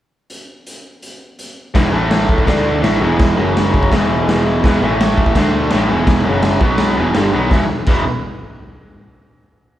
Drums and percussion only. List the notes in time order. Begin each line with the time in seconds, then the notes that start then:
0.30 closed hi-hat
0.67 closed hi-hat
1.02 closed hi-hat
1.39 closed hi-hat
1.75 kick, snare, crash
2.11 snare, crash
2.29 kick
2.38 kick
2.47 kick, snare, crash
2.84 snare, crash
3.19 kick, snare, crash
3.56 snare, crash
3.74 kick
3.83 kick
3.92 kick, snare, crash
4.29 snare, crash
4.64 kick, snare, crash
5.00 snare, crash
5.18 kick
5.26 kick
5.35 kick, snare, crash
5.70 snare, crash
6.07 kick, snare, crash
6.42 snare, crash
6.61 kick
6.78 snare, crash
7.14 snare, crash
7.51 kick, snare
7.86 kick, crash